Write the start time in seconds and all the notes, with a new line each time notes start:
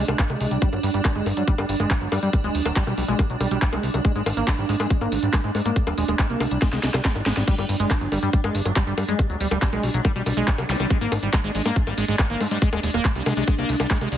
Already playing: D4
0.08 C2 G#3, closed hi-hat, high bongo
0.19 A#3, kick, clap, closed hi-hat
0.30 C2 G#3, closed hi-hat, high bongo
0.40 C2 G#3, open hi-hat
0.51 C2 G3, closed hi-hat
0.62 G3, kick, closed hi-hat
0.73 G1 F#3, closed hi-hat, high bongo
0.83 G1 G3, open hi-hat
0.94 G1 G3, closed hi-hat
1.05 G3, kick, clap, closed hi-hat, high bongo
1.15 G1 G#3, closed hi-hat
1.26 G1 G3, open hi-hat, high bongo
1.37 G2 F#3, closed hi-hat
1.48 G3, kick, closed hi-hat
1.58 G1 G3, closed hi-hat, high bongo
1.69 G1 G3, open hi-hat
1.80 G1 G#3, closed hi-hat, high bongo
1.90 G3, kick, clap, closed hi-hat
2.01 G1 F#3, closed hi-hat
2.12 G2 G3, open hi-hat, high bongo
2.23 G2 G3, closed hi-hat
2.33 G3, kick, closed hi-hat, high bongo
2.44 D1 G#3, closed hi-hat
2.55 D1 G3, open hi-hat
2.65 D1 F#3, closed hi-hat, high bongo
2.76 G3, kick, clap, closed hi-hat
2.87 B1 G3, closed hi-hat, high bongo
2.98 B1 G3, open hi-hat
3.08 B1 G#3, closed hi-hat
3.19 G3, kick, closed hi-hat, high bongo
3.30 B1 F#3, closed hi-hat
3.40 B1 G3, open hi-hat, high bongo
3.51 B1 G3, closed hi-hat
3.62 G3, kick, clap, closed hi-hat
3.73 C2 G#3, closed hi-hat, high bongo
3.83 C2 G3, open hi-hat
3.94 C2 F#3, closed hi-hat, high bongo
4.05 G#3, kick, closed hi-hat
4.15 G#1 G#3, closed hi-hat
4.26 G#1 G#3, open hi-hat, high bongo
4.37 G#1 A#3, closed hi-hat
4.48 G#3, kick, clap, closed hi-hat, high bongo
4.58 G#1 G3, closed hi-hat
4.69 G#1 G#3, open hi-hat
4.80 G#2 G#3, closed hi-hat, high bongo
4.90 kick, closed hi-hat
5.01 G#1 A#3, closed hi-hat, high bongo
5.12 G#1 G#3, open hi-hat
5.23 G#1 G3, closed hi-hat
5.33 G#3, kick, clap, closed hi-hat, high bongo
5.44 G#1 G#3, closed hi-hat
5.55 G#2 G#3, open hi-hat, high bongo
5.65 G#2 A#3, closed hi-hat
5.76 G#3, kick, closed hi-hat
5.87 D#1 G3, closed hi-hat, high bongo
5.98 D#1 G#3, open hi-hat
6.08 D#1 G#3, closed hi-hat, high bongo
6.19 kick, clap, closed hi-hat
6.30 C2 A#3, closed hi-hat
6.40 C2 G#3, open hi-hat, high bongo
6.51 C2 G3, closed hi-hat
6.62 G#3, kick, snare, closed hi-hat, high bongo
6.73 C2 G#3, snare, closed hi-hat
6.83 C2 G#3, snare, open hi-hat
6.94 C2 G3, snare, closed hi-hat, high bongo
7.05 G#3, kick, snare, clap, closed hi-hat
7.15 G#1 D#4, closed hi-hat, high bongo
7.26 G#1 G#3, snare, open hi-hat
7.37 G#1 G3, snare, closed hi-hat
7.48 G3 D4, kick, closed hi-hat, crash, shaker
7.58 G1 G3, closed hi-hat, high bongo, shaker
7.69 G1 G3, open hi-hat, shaker
7.80 G1 G#3, closed hi-hat, shaker
7.90 G3, kick, clap, closed hi-hat, high bongo, shaker
8.01 G1 F#3, closed hi-hat
8.12 G1 G3, open hi-hat, high bongo, shaker
8.23 G2 G3, closed hi-hat, shaker
8.33 G3, kick, closed hi-hat, shaker
8.44 G1 G#3, closed hi-hat, high bongo
8.55 G1 G3, open hi-hat, shaker
8.65 G1 F#3, closed hi-hat, high bongo, shaker
8.76 G3, kick, clap, closed hi-hat, shaker
8.87 G1 G3, closed hi-hat, shaker
8.98 G2 G3, open hi-hat, high bongo, shaker
9.08 G2 G#3, closed hi-hat, shaker
9.19 G3, kick, closed hi-hat, high bongo, shaker
9.30 D1 F#3, closed hi-hat, shaker
9.40 D1 G3, open hi-hat, shaker
9.51 D1 G3, closed hi-hat, high bongo, shaker
9.61 G3, kick, clap, closed hi-hat, shaker
9.73 B1 G#3, closed hi-hat, high bongo
9.83 B1 G3, open hi-hat, shaker
9.94 B1 F#3, closed hi-hat, shaker
10.04 G3, kick, closed hi-hat, high bongo, shaker
10.15 B1 G3, closed hi-hat
10.26 B1 G3, open hi-hat, high bongo, shaker
10.37 B1 G#3, closed hi-hat, shaker
10.47 G3, kick, clap, closed hi-hat, shaker
10.58 C2 F#3, closed hi-hat, high bongo, shaker
10.69 C2 G3, open hi-hat, zap, shaker
10.80 C2 G3, closed hi-hat, high bongo, shaker
10.90 G#3, kick, closed hi-hat, shaker
11.01 G#1 A#3, closed hi-hat, shaker
11.12 G#1 G#3, open hi-hat, high bongo, shaker
11.22 G#1 G3, closed hi-hat, shaker
11.33 G#3, kick, clap, closed hi-hat, high bongo, shaker
11.44 G#1 G#3, closed hi-hat
11.55 G#1 G#3, open hi-hat, shaker
11.65 G#2 A#3, closed hi-hat, high bongo, shaker
11.76 G#3, kick, closed hi-hat, shaker
11.87 G#1 G3, closed hi-hat, high bongo
11.98 G#1 G#3, open hi-hat, shaker
12.08 G#1 G#3, closed hi-hat, shaker
12.19 G#3, kick, clap, closed hi-hat, high bongo, shaker
12.30 G#1 A#3, closed hi-hat, shaker
12.40 G#2 G#3, open hi-hat, high bongo, shaker
12.51 G#2 G3, closed hi-hat, shaker
12.62 G#3, kick, closed hi-hat, shaker
12.71 D#1 G#3, closed hi-hat, high bongo, shaker
12.83 D#1 G#3, open hi-hat, shaker
12.94 D#1 A#3, closed hi-hat, high bongo, shaker
13.05 G#3, kick, clap, closed hi-hat, shaker
13.15 C2 G3, closed hi-hat
13.26 C2 G#3, open hi-hat, high bongo, shaker
13.37 C2 G#3, closed hi-hat, shaker
13.48 G#3, kick, closed hi-hat, high bongo, shaker
13.58 C2 A#3, closed hi-hat
13.69 C2 G#3, open hi-hat, shaker
13.80 C2 G3, closed hi-hat, high bongo, shaker
13.90 G#3, kick, clap, closed hi-hat, shaker
14.01 C2 G#3, closed hi-hat, high bongo, shaker
14.11 C2 G#3, open hi-hat, shaker